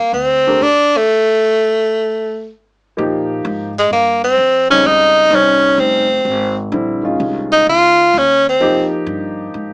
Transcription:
0.00 0.12 A#3 medium
0.13 0.58 D2 medium
0.13 0.64 C4 medium
0.47 0.61 A3 medium
0.47 0.61 D4 soft
0.47 0.62 G4 medium
0.47 0.62 A#4 medium
0.61 1.06 E2 medium
0.61 0.99 D4 loud
0.97 2.52 A3 medium
2.97 3.44 A#2 medium
2.97 3.69 F3 medium
2.97 3.69 A#3 medium
2.97 3.70 D#4 medium
2.97 3.70 G4 medium
3.45 3.90 G#2 medium
3.79 3.92 G#3 medium
3.91 4.37 G2 medium
3.91 4.21 A#3 medium
4.24 4.67 C4 medium
4.38 4.84 F2 medium
4.70 5.29 C#3 medium
4.70 5.29 G3 medium
4.70 5.30 C4 medium
4.70 4.88 C#4 medium
4.70 5.30 D#4 medium
4.85 5.30 C#2 medium
4.85 5.36 D#4 loud
5.30 5.77 C2 medium
5.30 6.04 G3 medium
5.30 6.04 C#4 medium
5.30 6.04 D#4 medium
5.30 6.04 C5 medium
5.35 5.81 C#4 medium
5.78 6.24 F1 medium
5.78 6.58 C4 medium
6.25 6.71 G#1 medium
6.72 7.18 A#1 medium
6.72 7.01 D3 medium
6.72 7.01 G3 medium
6.72 7.01 C4 medium
6.72 7.01 E4 medium
7.03 8.04 D#3 medium
7.03 8.04 G#3 soft
7.03 8.04 C#4 medium
7.03 8.04 F4 medium
7.20 7.65 C2 medium
7.52 7.66 D#4 loud
7.67 8.12 C#2 medium
7.67 8.19 F4 medium
8.14 8.59 D#2 medium
8.18 8.47 C#4 medium
8.49 8.91 C4 medium
8.60 9.06 F2 medium
8.60 9.73 F3 medium
8.60 9.73 A#3 medium
8.60 9.73 D#4 medium
8.60 9.73 G4 medium
9.06 9.52 G2 medium
9.54 9.73 G#2 medium

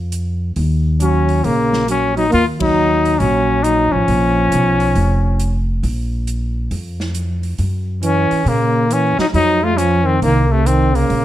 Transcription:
0.00 0.53 F2 medium
0.12 closed hi-hat soft
0.56 1.40 D#2 medium
0.56 open hi-hat soft
1.00 1.45 F#3 medium
1.00 1.46 C#4 medium
1.00 closed hi-hat medium
1.29 open hi-hat soft
1.44 2.29 A#1 medium
1.44 1.86 C#3 medium
1.44 1.88 A#3 medium
1.44 open hi-hat soft
1.73 snare soft
1.87 2.14 F#3 medium
1.87 2.16 C#4 medium
1.87 closed hi-hat medium
2.16 2.29 F#3 medium
2.16 2.31 D#4 medium
2.16 open hi-hat soft
2.30 3.17 D#2 medium
2.30 2.43 A#3 medium
2.30 2.46 F4 medium
2.30 open hi-hat soft
2.59 3.19 F#3 medium
2.59 3.20 D#4 medium
2.59 kick medium
2.59 ride medium
3.05 open hi-hat soft
3.19 3.89 A#1 medium
3.19 3.62 F#3 medium
3.19 3.65 C#4 medium
3.19 open hi-hat soft
3.62 3.92 F#3 medium
3.62 3.94 D#4 medium
3.62 closed hi-hat medium
3.91 4.07 A1 medium
3.91 5.67 F3 medium
3.91 5.68 C#4 medium
4.08 4.49 A#1 medium
4.08 open hi-hat soft
4.52 4.93 B1 medium
4.52 closed hi-hat medium
4.80 open hi-hat soft
4.95 5.79 F1 medium
4.95 open hi-hat soft
5.40 closed hi-hat medium
5.83 6.67 A#1 medium
5.83 open hi-hat soft
6.27 closed hi-hat medium
6.71 7.55 F2 medium
6.71 open hi-hat soft
7.00 snare soft
7.15 closed hi-hat medium
7.43 open hi-hat soft
7.58 8.27 F#2 medium
7.58 open hi-hat soft
8.03 8.48 E3 medium
8.03 8.50 C#4 medium
8.03 closed hi-hat medium
8.31 muted upright bass stroke soft
8.31 open hi-hat soft
8.46 9.15 A#2 medium
8.46 8.92 C#3 medium
8.46 8.95 A#3 medium
8.46 open hi-hat soft
8.90 9.18 E3 medium
8.90 9.19 C#4 medium
8.90 closed hi-hat soft
9.18 9.26 F#3 medium
9.18 9.26 D#4 medium
9.18 muted upright bass stroke soft
9.18 snare soft
9.34 10.18 F2 medium
9.34 9.65 F#3 medium
9.34 9.65 D#4 loud
9.34 open hi-hat soft
9.63 9.80 A3 medium
9.63 9.79 F4 medium
9.77 10.07 F3 medium
9.77 10.08 C#4 medium
9.77 closed hi-hat soft
10.06 10.22 D#3 medium
10.06 10.22 C4 medium
10.22 11.06 C2 medium
10.22 10.52 D#3 medium
10.22 10.53 A#3 medium
10.22 open hi-hat soft
10.50 10.68 C3 medium
10.50 10.68 A3 medium
10.66 10.96 D#3 medium
10.66 10.97 C4 medium
10.66 closed hi-hat medium
10.95 11.25 C#3 medium
10.95 11.25 A#3 medium
10.95 open hi-hat soft
11.10 11.25 A#1 medium
11.10 open hi-hat soft

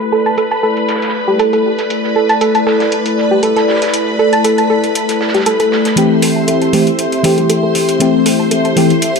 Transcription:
0.00 5.93 A3 medium
0.00 5.93 E4 medium
0.00 5.93 A4 medium
0.00 5.98 B4 medium
0.00 5.93 D5 medium
0.00 5.98 B5 medium
0.00 closed hi-hat soft
0.12 0.19 A4 medium
0.12 shaker medium
0.26 0.32 A5 medium
0.26 closed hi-hat soft
0.37 0.42 A4 medium
0.37 closed hi-hat medium
0.37 shaker medium
0.51 0.61 A5 medium
0.51 closed hi-hat soft
0.63 0.74 A4 medium
0.63 shaker medium
0.77 closed hi-hat soft
0.89 snare medium
0.89 closed hi-hat medium
0.89 shaker medium
0.95 snare medium
1.02 snare medium
1.02 closed hi-hat soft
1.08 snare medium
1.08 shaker medium
1.13 shaker medium
1.28 1.34 G4 medium
1.39 1.44 A4 medium
1.39 closed hi-hat medium
1.53 1.57 A4 medium
1.53 closed hi-hat soft
1.64 shaker medium
1.79 snare medium
1.79 closed hi-hat soft
1.90 closed hi-hat medium
1.90 shaker medium
2.04 snare soft
2.15 2.23 A4 medium
2.15 shaker medium
2.29 2.35 A5 medium
2.29 closed hi-hat soft
2.41 2.45 A4 medium
2.41 closed hi-hat medium
2.55 2.64 A5 medium
2.55 closed hi-hat soft
2.67 2.77 A4 medium
2.67 snare loud
2.67 shaker medium
2.80 snare loud
2.80 closed hi-hat soft
2.80 shaker medium
2.92 closed hi-hat medium
2.92 shaker medium
3.06 closed hi-hat medium
3.17 snare soft
3.17 shaker medium
3.31 3.37 G4 medium
3.43 3.47 A4 medium
3.43 closed hi-hat medium
3.43 shaker medium
3.57 3.60 A4 medium
3.57 snare medium
3.57 closed hi-hat soft
3.68 snare medium
3.68 shaker medium
3.75 snare medium
3.75 shaker medium
3.82 snare medium
3.82 closed hi-hat medium
3.82 shaker medium
3.87 snare medium
3.87 shaker medium
3.94 closed hi-hat medium
4.07 closed hi-hat soft
4.19 4.26 A4 medium
4.19 shaker medium
4.33 4.39 A5 medium
4.33 closed hi-hat soft
4.44 4.49 A4 medium
4.44 closed hi-hat medium
4.44 shaker medium
4.58 4.67 A5 medium
4.58 closed hi-hat soft
4.69 4.81 A4 medium
4.69 shaker medium
4.84 closed hi-hat soft
4.95 closed hi-hat medium
4.95 shaker medium
5.09 snare soft
5.09 closed hi-hat medium
5.21 snare medium
5.21 shaker medium
5.28 snare medium
5.28 shaker medium
5.34 5.41 G4 medium
5.34 snare medium
5.34 closed hi-hat soft
5.34 shaker medium
5.39 snare medium
5.39 shaker medium
5.46 5.50 A4 medium
5.46 closed hi-hat medium
5.60 5.64 A4 medium
5.60 closed hi-hat soft
5.72 snare loud
5.72 shaker medium
5.85 snare medium
5.85 closed hi-hat medium
5.85 shaker medium
5.96 6.70 E3 medium
5.96 6.70 A3 medium
5.96 9.20 C4 medium
5.96 6.71 C4 medium
5.96 9.20 E4 medium
5.96 9.20 G4 medium
5.96 6.71 G4 medium
5.96 9.20 A4 medium
5.96 9.20 C5 medium
5.96 9.20 E5 medium
5.96 9.20 C6 medium
5.96 closed hi-hat medium
6.22 6.30 A4 medium
6.22 open hi-hat loud
6.36 6.42 A5 medium
6.48 6.52 A4 medium
6.48 closed hi-hat medium
6.62 6.71 A5 medium
6.62 closed hi-hat soft
6.73 6.89 E3 medium
6.73 6.89 A3 medium
6.73 6.89 C4 medium
6.73 6.89 G4 medium
6.73 6.84 A4 medium
6.73 open hi-hat loud
6.87 closed hi-hat soft
6.99 closed hi-hat medium
7.12 closed hi-hat medium
7.23 7.97 E3 medium
7.23 7.97 A3 medium
7.23 7.98 C4 medium
7.23 7.98 G4 loud
7.23 open hi-hat loud
7.38 7.44 G4 medium
7.38 closed hi-hat soft
7.50 7.54 A4 medium
7.50 closed hi-hat medium
7.63 7.67 A4 medium
7.75 open hi-hat loud
7.89 closed hi-hat medium
7.99 8.73 E3 medium
7.99 8.74 A3 medium
7.99 8.74 C4 medium
7.99 8.74 G4 medium
7.99 closed hi-hat medium
8.26 8.33 A4 medium
8.26 open hi-hat loud
8.40 8.46 A5 medium
8.51 8.56 A4 medium
8.51 closed hi-hat medium
8.65 8.74 A5 medium
8.65 closed hi-hat soft
8.76 8.92 E3 medium
8.76 8.92 A3 medium
8.76 8.93 C4 medium
8.76 8.93 G4 medium
8.76 8.87 A4 medium
8.76 open hi-hat loud
8.90 closed hi-hat soft
9.02 closed hi-hat medium
9.16 closed hi-hat soft

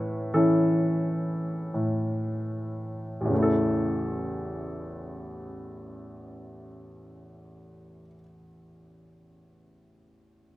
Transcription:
0.00 1.70 A2 soft
0.00 0.32 E3 soft
0.00 0.35 E4 soft
0.00 0.31 A4 soft
0.00 0.30 B4 soft
0.00 3.33 C#5 soft
0.34 3.27 E3 soft
0.34 3.27 C#4 soft
0.34 3.27 E4 soft
0.34 1.70 A4 soft
1.74 3.27 A2 soft
3.21 8.02 A1 soft
3.25 8.06 E2 soft
3.29 8.10 C#3 soft
3.34 8.15 A3 soft
3.38 8.19 E4 soft
3.42 8.23 A4 soft

